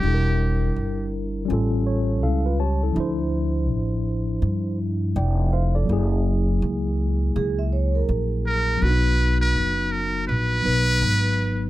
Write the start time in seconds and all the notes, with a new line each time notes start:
Already playing: G4
0.00 E1 G3 D4
0.05 E4 A4
0.14 A#4
0.76 G1
1.45 G3 C#4
1.50 A1 F4 A4
1.87 C#5
2.23 C#2 E4 A4 F5
2.46 F4 B4
2.60 G4 C#5 A5
2.83 E4 A4
2.92 D2 F3 D4
2.97 E4 C5
3.69 A1
4.42 G2
5.16 F1 D5 G5
5.53 C5 F5
5.75 A4 D5
5.85 F#1 F#3 A#3
5.90 E4 G#4
6.62 C#2
7.36 C#2 G#4
7.59 E5
7.73 C#5
7.95 A#4
8.09 A#1
8.47 A#4
8.77 F#3 B3
8.82 B1 D4 F#4 B4
8.89 D#4
9.41 B4
9.56 F#1
9.92 A#4
10.28 A#1 B4
10.62 B1 F#3 B3 D#4 B4
11.02 G#1